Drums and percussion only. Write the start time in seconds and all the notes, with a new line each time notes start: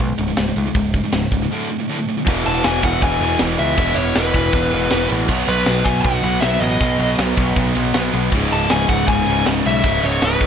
0.18 ride
0.37 snare, ride
0.56 ride
0.74 kick, ride
0.94 kick, ride
1.12 snare, ride
1.23 snare
1.32 kick, ride
2.26 kick, crash
2.45 ride
2.64 snare, ride
2.83 kick, ride
3.02 kick, ride
3.21 ride
3.39 snare, ride
3.59 ride
3.77 kick, ride
3.96 ride
4.15 snare, ride
4.34 kick, ride
4.53 kick, ride
4.72 ride
4.90 snare, ride
5.09 ride
5.28 kick, crash
5.47 ride
5.66 snare, ride
5.85 kick, ride
6.04 kick, ride
6.23 ride
6.42 snare, ride
6.61 ride
6.81 kick, ride
7.00 ride
7.18 snare, ride
7.37 kick, ride
7.56 kick, ride
7.75 ride
7.94 snare, ride
8.13 ride
8.32 kick, crash
8.51 ride
8.70 snare, ride
8.89 kick, ride
9.07 kick, ride
9.27 ride
9.46 snare, ride
9.65 ride
9.84 kick, ride
10.03 ride
10.22 snare, ride
10.41 kick, ride